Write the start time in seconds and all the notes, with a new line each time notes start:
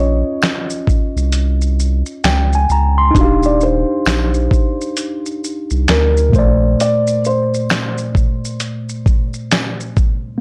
Already playing: A#1 C#4 F4 D#5
0.00 C#5
0.42 finger snap, snare, closed hi-hat, tambourine, shaker
0.70 shaker
0.87 kick, shaker
1.16 C2, shaker
1.32 closed hi-hat, shaker
1.61 shaker
1.80 shaker
2.06 shaker
2.24 C#2 G5, finger snap, snare, closed hi-hat, tambourine, shaker
2.53 G#5, shaker
2.69 C#2 A#5, shaker
2.98 C6
3.11 D4 D#4
3.15 D#1 F#4, kick, closed hi-hat, shaker
3.21 G4 F5
3.43 D5, shaker
3.61 C5, shaker
4.05 A#1, finger snap, snare, closed hi-hat, tambourine, shaker
4.34 shaker
4.51 kick, shaker
4.81 shaker
4.97 closed hi-hat, shaker
5.26 shaker
5.44 shaker
5.70 C2, shaker
5.88 D2 A#4, finger snap, snare, closed hi-hat, tambourine, shaker
6.17 shaker
6.29 A#2 A3
6.33 A#1 C5, kick, shaker
6.39 D5
6.80 D5, closed hi-hat, shaker
7.07 shaker
7.25 C5, shaker
7.54 shaker
7.69 finger snap, snare, closed hi-hat, tambourine, shaker
7.98 shaker
8.15 kick, shaker
8.45 shaker
8.60 closed hi-hat, shaker
8.89 shaker
9.06 kick, shaker
9.34 shaker
9.51 finger snap, snare, closed hi-hat, tambourine, shaker
9.80 shaker
9.97 kick, shaker